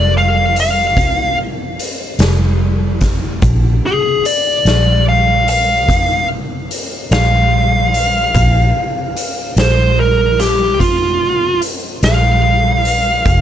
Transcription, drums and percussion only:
0.56 closed hi-hat medium
0.97 kick medium
0.97 closed hi-hat medium
1.79 closed hi-hat medium
2.19 snare medium
2.19 closed hi-hat medium
3.01 kick medium
3.01 snare soft
3.01 closed hi-hat medium
3.42 kick loud
3.42 closed hi-hat medium
4.25 closed hi-hat medium
4.66 snare medium
4.66 closed hi-hat medium
5.48 closed hi-hat medium
5.89 kick medium
5.89 closed hi-hat medium
6.71 closed hi-hat medium
7.12 snare loud
7.12 closed hi-hat medium
7.94 closed hi-hat medium
8.35 kick loud
8.35 closed hi-hat medium
9.16 closed hi-hat medium
9.57 snare loud
9.57 closed hi-hat medium
10.40 snare soft
10.40 closed hi-hat medium
10.80 kick medium
10.80 closed hi-hat medium
11.62 closed hi-hat medium
12.03 snare loud
12.03 closed hi-hat medium
12.85 closed hi-hat medium
13.26 kick loud
13.26 closed hi-hat medium

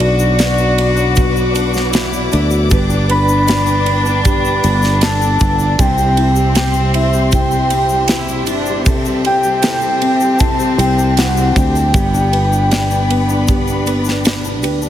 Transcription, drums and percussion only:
0.00 ride medium
0.19 shaker medium
0.39 snare loud
0.39 ride medium
0.39 shaker medium
0.58 shaker soft
0.78 ride medium
0.97 shaker soft
1.16 kick medium
1.16 ride medium
1.16 shaker medium
1.36 shaker soft
1.55 ride medium
1.55 shaker soft
1.74 snare soft
1.74 shaker soft
1.93 snare loud
1.93 ride medium
1.93 shaker medium
2.13 shaker soft
2.32 ride medium
2.32 shaker soft
2.51 shaker medium
2.70 kick loud
2.70 ride medium
2.70 shaker medium
2.90 shaker soft
3.09 ride medium
3.28 shaker medium
3.48 snare loud
3.48 ride medium
3.48 shaker medium
3.67 shaker soft
3.86 ride medium
4.06 shaker soft
4.25 kick medium
4.25 ride medium
4.25 shaker medium
4.45 shaker soft
4.64 ride medium
4.64 shaker soft
4.82 snare soft
4.82 shaker medium
5.01 snare loud
5.01 ride medium
5.01 shaker medium
5.22 shaker soft
5.39 kick medium
5.39 ride medium
5.39 shaker soft
5.59 shaker medium
5.79 kick loud
5.79 ride medium
5.79 shaker medium
5.98 shaker soft
6.17 ride medium
6.36 shaker medium
6.55 snare loud
6.55 ride medium
6.55 shaker medium
6.73 shaker soft
6.94 ride medium
7.13 shaker soft
7.32 kick medium
7.32 ride medium
7.32 shaker medium
7.51 shaker soft
7.70 ride medium
7.70 shaker medium
7.89 shaker soft
8.08 snare loud
8.08 ride medium
8.08 shaker medium
8.28 shaker soft
8.46 ride medium
8.46 shaker medium
8.66 shaker medium
8.86 kick loud
8.86 ride medium
8.86 shaker medium
9.05 shaker medium
9.25 ride medium
9.43 shaker medium
9.63 snare loud
9.63 ride medium
9.63 shaker medium
9.81 shaker soft
10.02 ride medium
10.20 shaker medium
10.39 kick medium
10.39 ride medium
10.39 shaker medium
10.60 shaker soft
10.79 ride medium
10.79 shaker soft
10.99 shaker soft
11.17 snare loud
11.17 ride medium
11.17 shaker medium
11.37 shaker medium
11.56 kick medium
11.56 ride medium
11.56 shaker soft
11.76 shaker medium
11.94 kick loud
11.94 ride medium
11.94 shaker medium
12.14 shaker medium
12.33 ride medium
12.53 shaker medium
12.71 snare loud
12.71 ride medium
12.71 shaker medium
12.90 shaker soft
13.10 ride medium
13.29 shaker soft
13.48 kick loud
13.48 ride medium
13.48 shaker medium
13.68 shaker soft
13.86 ride medium
13.86 shaker medium
14.05 snare soft
14.05 shaker soft
14.25 snare loud
14.25 ride medium
14.25 shaker medium
14.45 shaker soft
14.63 ride medium
14.63 shaker soft
14.82 shaker medium

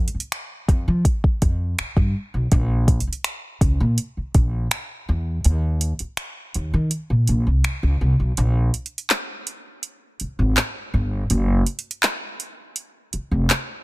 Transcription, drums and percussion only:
0.08 closed hi-hat medium
0.20 closed hi-hat medium
0.32 finger snap loud
0.32 closed hi-hat medium
0.68 kick medium
0.68 closed hi-hat medium
1.05 kick medium
1.05 closed hi-hat medium
1.24 kick medium
1.42 kick medium
1.42 closed hi-hat soft
1.79 finger snap loud
1.79 closed hi-hat medium
1.97 kick medium
2.52 kick medium
2.52 closed hi-hat medium
2.88 kick medium
2.88 closed hi-hat medium
3.00 closed hi-hat medium
3.13 closed hi-hat medium
3.24 finger snap loud
3.24 closed hi-hat medium
3.61 kick medium
3.61 closed hi-hat medium
3.98 closed hi-hat medium
4.34 kick medium
4.34 closed hi-hat soft
4.71 finger snap loud
4.71 closed hi-hat medium
5.45 closed hi-hat medium
5.81 closed hi-hat medium
5.99 closed hi-hat soft
6.17 finger snap loud
6.17 closed hi-hat medium
6.54 closed hi-hat medium
6.91 closed hi-hat medium
7.28 closed hi-hat soft
7.64 finger snap loud
7.64 closed hi-hat medium
8.37 closed hi-hat medium
8.74 closed hi-hat medium
8.86 closed hi-hat medium
8.98 closed hi-hat medium
9.10 clap loud
9.10 closed hi-hat medium
9.47 closed hi-hat medium
9.83 closed hi-hat medium
10.20 closed hi-hat medium
10.57 clap loud
10.57 closed hi-hat medium
11.30 closed hi-hat medium
11.66 closed hi-hat medium
11.79 closed hi-hat medium
11.91 closed hi-hat medium
12.03 clap loud
12.03 closed hi-hat medium
12.40 closed hi-hat medium
12.76 closed hi-hat medium
13.13 closed hi-hat medium
13.50 clap loud
13.50 closed hi-hat medium

